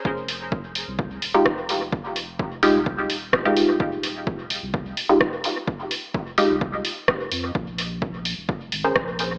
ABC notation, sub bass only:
X:1
M:4/4
L:1/16
Q:1/4=128
K:Fm
V:1 name="Sub bass" clef=bass
F,,,6- F,,, C,,3 E,,,2 F,,,4- | F,,,6- F,,, C,,3 E,,,6- | E,,,6- E,,, C,,3 z6 | z6 z C,,3 z4 F,,2 |
B,,,6- B,,, F,,,3 A,,,2 B,,,4 |]